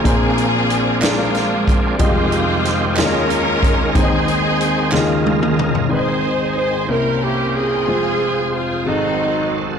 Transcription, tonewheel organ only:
0.00 1.97 F3 medium
0.00 1.97 A#3 medium
0.00 1.96 G#4 medium
0.06 2.95 C4 medium
0.06 1.99 D4 medium
2.00 4.90 D#3 medium
2.00 5.87 G#3 medium
2.00 3.93 F4 medium
2.00 2.97 G4 medium
2.97 3.94 C#4 medium
2.97 3.94 A#4 medium
3.95 4.92 C4 medium
3.95 4.92 G#4 medium
3.95 4.92 C5 medium
4.92 5.89 C#3 medium
4.92 5.89 D#3 medium
4.92 5.89 F4 medium
4.92 5.89 A#4 medium
5.89 6.87 D#3 soft
5.89 6.88 G#3 soft
5.89 6.87 C4 soft
5.89 6.87 G#4 soft
5.89 8.81 C5 soft
6.89 7.86 C3 soft
6.89 7.86 A#3 soft
6.89 7.86 G5 soft
7.87 8.84 F3 soft
7.87 9.79 C4 soft
7.87 8.84 G#4 soft
8.86 9.79 D#3 soft
8.86 9.79 F#4 soft
8.86 9.79 A4 medium

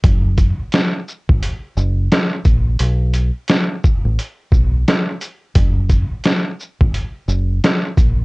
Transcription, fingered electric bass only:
0.04 0.53 F#1 medium
1.29 1.41 G#1 medium
1.77 2.07 F#1 medium
2.45 2.76 A#1 medium
2.80 3.29 B1 medium
4.05 4.17 A1 medium
4.52 4.83 B1 medium
5.56 6.05 F#1 loud
6.81 6.93 G#1 medium
7.28 7.59 F#1 loud
7.98 8.25 A#1 medium

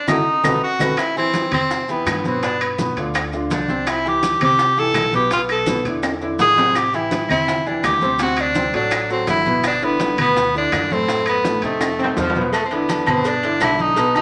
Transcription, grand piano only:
0.08 0.20 E4 loud
0.08 0.20 F#4 loud
0.08 0.20 A4 medium
0.44 0.56 F#4 medium
0.44 0.56 A4 loud
0.44 0.56 B4 medium
0.81 0.93 F#4 medium
0.81 0.92 A4 medium
0.81 0.93 B4 medium
1.17 1.46 E3 medium
1.17 1.46 E4 medium
1.17 1.47 G4 medium
1.53 1.82 C3 medium
1.53 1.82 C4 medium
1.53 1.83 C5 medium
1.88 2.18 E3 medium
1.88 2.19 E4 medium
1.88 2.18 G4 medium
2.25 2.40 B2 medium
2.25 2.40 B3 medium
2.25 2.40 B4 medium
2.43 2.72 B2 medium
2.43 2.72 B3 medium
2.43 2.73 B4 medium
2.79 2.94 B2 medium
2.79 2.94 B3 medium
2.79 2.94 B4 medium
2.98 3.27 D3 medium
2.98 3.27 D4 medium
2.98 3.27 F4 medium
3.33 3.63 D3 medium
3.33 3.63 D4 medium
3.33 3.63 F4 medium
3.69 3.99 C3 medium
3.69 3.99 C4 medium
3.69 3.99 C5 medium
4.05 4.35 E3 medium
4.05 4.35 E4 medium
4.05 4.35 G4 medium
4.41 4.71 C3 medium
4.41 4.71 C4 medium
4.41 4.71 C5 medium
4.78 5.07 E3 medium
4.78 5.07 E4 medium
4.78 5.08 G4 medium
5.14 5.28 B2 medium
5.14 5.28 B3 medium
5.14 5.29 B4 medium
5.32 5.61 B2 medium
5.32 5.61 B3 medium
5.32 5.62 B4 medium
5.68 5.83 B2 medium
5.68 5.83 B3 medium
5.68 5.83 B4 medium
5.86 6.15 D3 medium
5.86 6.16 D4 medium
5.86 6.16 E4 medium
6.22 6.51 D3 medium
6.22 6.52 D4 medium
6.22 6.52 E4 medium
6.58 6.87 C3 medium
6.58 6.88 C4 medium
6.58 6.88 C5 medium
6.94 7.24 E3 medium
6.94 7.24 E4 medium
6.94 7.24 G4 medium
7.30 7.60 C3 medium
7.30 7.60 C4 medium
7.30 7.60 C5 medium
7.66 7.96 E3 medium
7.66 7.96 E4 medium
7.66 7.96 G4 medium
8.02 8.17 C3 medium
8.02 8.17 C4 medium
8.02 8.17 C5 medium
8.20 8.50 C3 medium
8.20 8.50 C4 medium
8.20 8.50 C5 medium
8.56 8.71 C3 medium
8.56 8.71 C4 medium
8.56 8.71 C5 medium
8.74 9.03 F#3 medium
8.74 9.04 F#4 medium
8.74 9.04 A4 medium
9.10 9.40 F#3 medium
9.10 9.40 F#4 medium
9.10 9.40 A4 medium
9.46 9.76 B2 medium
9.46 9.76 B3 medium
9.46 9.76 B4 medium
9.82 10.12 D3 medium
9.82 10.12 D4 medium
9.82 10.12 E4 medium
10.19 10.48 B2 medium
10.19 10.48 B3 medium
10.19 10.49 B4 medium
10.55 10.84 D3 medium
10.55 10.84 D4 medium
10.55 10.85 E4 medium
10.91 11.06 A2 medium
10.91 11.06 A3 medium
10.91 11.06 A4 medium
11.09 11.39 A2 medium
11.09 11.39 A3 medium
11.09 11.39 A4 medium
11.46 11.60 A2 medium
11.46 11.60 A3 medium
11.46 11.60 A4 medium
11.63 11.93 C3 medium
11.63 11.93 C4 medium
11.63 11.93 D#4 medium
11.99 12.29 C3 medium
11.99 12.29 C4 medium
11.99 12.29 D#4 medium
12.36 12.50 B2 medium
12.36 12.50 B3 medium
12.36 12.51 B4 medium
12.72 13.01 D3 medium
12.72 13.01 D4 medium
12.72 13.02 E4 medium
13.08 13.37 B2 medium
13.08 13.37 B3 medium
13.08 13.37 B4 medium
13.44 13.58 D3 medium
13.44 13.59 D4 medium
13.44 13.59 E4 medium
13.61 13.91 D3 medium
13.61 13.91 D4 medium
13.61 13.91 E4 medium
13.97 14.12 B2 medium
13.97 14.13 B3 medium
13.97 14.13 B4 medium
14.15 14.22 D#3 medium
14.15 14.22 D#4 medium
14.15 14.22 F#4 medium

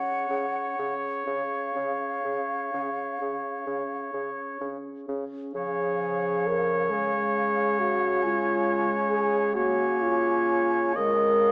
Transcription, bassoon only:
0.30 0.46 C#3 soft
0.79 0.95 C#3 soft
1.27 1.43 C#3 soft
1.76 1.92 C#3 soft
2.25 2.41 C#3 soft
2.74 2.90 C#3 soft
3.21 3.37 C#3 soft
3.67 3.83 C#3 soft
4.13 4.29 C#3 soft
4.61 4.77 C#3 soft
5.08 5.24 C#3 soft
5.55 10.93 C#3 medium
10.97 11.52 C#3 medium

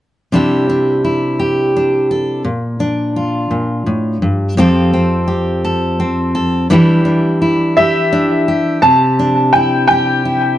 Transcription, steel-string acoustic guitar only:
0.32 2.45 C3 medium
0.32 2.42 G3 soft
0.32 0.69 D4 soft
0.32 1.03 E4 soft
0.32 1.38 G4 soft
0.69 1.75 D4 soft
1.04 2.42 E4 soft
1.39 2.10 G4 soft
1.76 2.42 D4 soft
2.11 2.42 A4 soft
2.45 3.49 A#2 medium
2.80 4.53 D4 soft
3.16 4.54 F4 soft
3.51 3.86 A#2 soft
3.86 4.22 A2 soft
4.22 4.57 G2 soft
4.57 6.70 F2 medium
4.57 6.70 F3 soft
4.57 4.93 C4 soft
4.57 5.27 G4 soft
4.57 5.63 A4 medium
4.93 5.99 C4 soft
5.28 6.71 G4 soft
5.65 6.34 A4 soft
6.00 6.71 C4 soft
6.35 6.66 A4 soft
6.70 8.78 E3 medium
6.70 8.79 G3 medium
6.70 7.04 D4 medium
6.70 7.40 E4 soft
6.70 7.76 G4 medium
7.05 8.11 D4 soft
7.42 8.79 E4 soft
7.77 8.47 G4 soft
8.13 8.79 D4 soft
8.48 9.89 G4 soft
8.83 10.58 C3 medium
9.19 10.58 D4 soft
9.55 10.24 E4 soft
9.91 10.58 G4 soft
10.25 10.58 E4 soft

